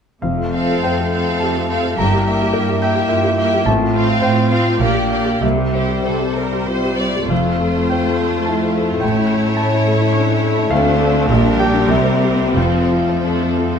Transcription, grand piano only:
0.22 F2 F5
0.37 A4
0.54 F5
0.71 A4
0.83 C5 G5
1.01 A4
1.15 F5
1.29 A4
1.40 G4 A5
1.57 A4
1.72 F5
1.86 A4
1.98 G2 A#5
2.14 G4
2.28 E5
2.43 G4
2.54 A#4
2.69 G4
2.82 E5 G5
2.95 G4
3.09 F4 E5
3.24 G4
3.38 E5
3.54 G4
3.66 A2 A5
3.83 F4
3.96 F5
4.09 F4
4.22 C5 G5
4.36 F4
4.52 F5
4.68 F4
4.81 A#2 F5
4.95 G4
5.10 F5
5.25 G4
5.42 C2 E5
5.57 G4
5.75 C5
5.89 G4
6.04 C5
6.20 G4
6.37 C5
6.53 G4
6.69 F4
6.83 G4
7.01 C5
7.16 G4
7.30 F2 F5
7.45 F4
7.61 A4
7.77 F4
7.90 C5 G5
8.06 F4
8.21 A4
8.35 F4
8.46 E4 A5
8.64 F4
8.77 A4
8.92 F4
9.00 A2 G5
9.18 E4
9.34 A4
9.48 E4
9.57 A5
9.62 C#5
9.73 E4
9.88 A4
10.01 E4
10.13 D4 C#6
10.30 E4
10.44 A4
10.58 E4
10.71 D2 F5
10.87 D4
11.01 A4
11.14 D4
11.30 A#1
11.45 D4
11.59 G4 G5
11.74 D4
11.88 C2 E5
12.05 C4
12.24 G4
12.40 C4
12.56 F2 F5
12.74 C4
12.92 F4
13.09 C4
13.27 A4
13.43 C4
13.58 F4
13.73 C4

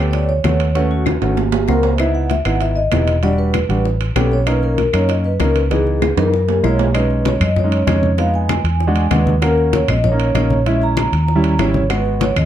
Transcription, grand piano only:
0.00 A3 B3 G4
0.44 A3 B3 F#4
0.75 A3 C#4 F#4
1.21 A3 C#4 F#4
1.68 A#3 C4 F#4
1.99 B3 D#4 E4
2.45 B3 D#4 E4
2.92 B3 D#4 E4
3.23 G3 D4 F#4
3.69 G3 D4 F#4
4.16 B3 C#4 G4
4.46 A#3 C#4 D#4
4.93 A#3 C#4 D#4
5.40 A#3 C#4 D#4
5.71 E3 B3 D#4
6.17 E3 B3 D#4
6.63 G#3 A#3 E4
6.94 G#3 C#4 D#4
7.64 G#3 C#4 D#4
7.87 G#3 C#4 D#4
8.18 G#3 B3 D#4
8.87 G#3 D4 F#4
9.11 G#3 D4 F#4
9.42 A#3 C#4 F#4
10.12 A#3 C#4 D#4
10.34 A#3 C#4 D#4
10.66 G#3 C#4 E4
11.35 G3 C#4 E4
11.59 G3 C#4 E4
11.90 G#3 B3 F#4

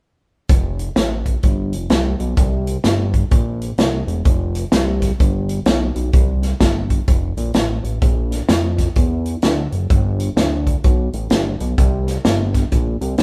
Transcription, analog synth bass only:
0.49 F1
0.96 A1
1.44 G1
1.73 F1
1.90 C2
2.20 B1
2.37 C2
2.84 G1
3.31 A#1
3.78 C2
4.07 E1
4.25 F1
4.72 C2
5.20 G1
5.66 B1
5.96 B1
6.14 C2
6.61 G1
7.08 F1
7.37 A#1
7.55 A1
7.84 A1
8.02 A#1
8.49 F2
8.97 E2
9.43 D2
9.72 F#1
9.90 G1
10.37 D2
10.84 B1
11.14 A1
11.31 G1
11.61 B1
11.78 C2
12.25 G1
12.72 A#1
13.01 C2
13.18 D2

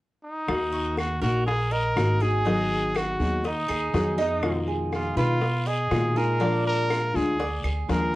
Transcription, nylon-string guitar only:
0.47 D#3 A#3 D#4 F#4
1.21 A#3 D#4 F#4
1.47 muted nylon-string guitar stroke
1.96 D#3 A#3 D#4 F#4
2.21 A#3 D#4 F#4
2.45 D#3 F#3 B3 D#4 G#4
3.19 F#3 B3 D#4 G#4
3.45 muted nylon-string guitar stroke
3.93 D#3 F#3 B3 D#4 G#4
4.18 B3 D#4 G#4
4.42 B2 D#3 G#3 D#4 F4
5.17 D#3 G#3 D#4 F4
5.42 muted nylon-string guitar stroke
5.91 B2 D#3 G#3 D#4 F4
6.16 G#3 D#4 F4
6.40 F3 G#3 D4 F4
7.14 G#3 D4 F4
7.39 muted nylon-string guitar stroke
7.88 F3 G#3 D4 F4

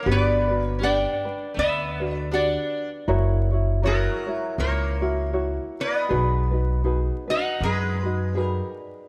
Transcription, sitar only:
0.03 B3
0.54 A#3
0.79 D4
1.54 B3
2.08 A3
2.31 D4
3.83 F#3
4.58 A#3
5.80 B3
7.31 D#4
7.61 G#3
8.37 G3

